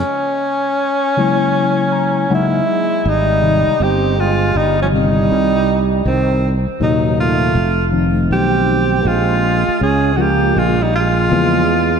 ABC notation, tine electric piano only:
X:1
M:4/4
L:1/16
Q:"Swing 16ths" 1/4=80
K:Ab
V:1 name="Tine electric piano"
z8 z2 b a _g _f3 | z16 | z16 | z16 |]
V:2 name="Tine electric piano" clef=bass
z6 [D,_G,A,B,_F]6 [D,G,A,B,E]2 z2 | z2 [C,E,G,A,E]2 z6 [C,E,G,C]2 z4 | z4 [B,,C,E,_G,E]4 z2 [E,F,=A,CE]6 | z6 [D,F,A,B,F]2 z4 [D,F,A,B,F]2 z2 |]